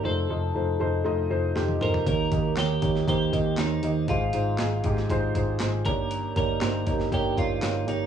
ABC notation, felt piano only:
X:1
M:4/4
L:1/8
Q:1/4=119
K:Ebmix
V:1 name="Felt piano"
[=A,EFc] [A,EFe] [A,EFc] [A,EFc] [A,EFe] [A,EFc] [A,EFG] [A,EFc] | [B,EGd] [B,EGe] [B,EGd] [B,EGd] [B,EGc] [B,EGe] [B,EGd] [B,EGe] | [A,EFc] [A,EFc] [A,EFA] [A,EFG] [A,EFc] [A,EFc] [A,EFc] [B,EGd]- | [B,EGd] [B,EGd] [B,EGc] [B,EGd] [B,EGd] [B,EGd] [B,EGd] [B,EGd] |]
V:2 name="Felt piano" clef=bass
z8 | E,3 z4 z | A,,3 z4 G,,- | G,,2 z6 |]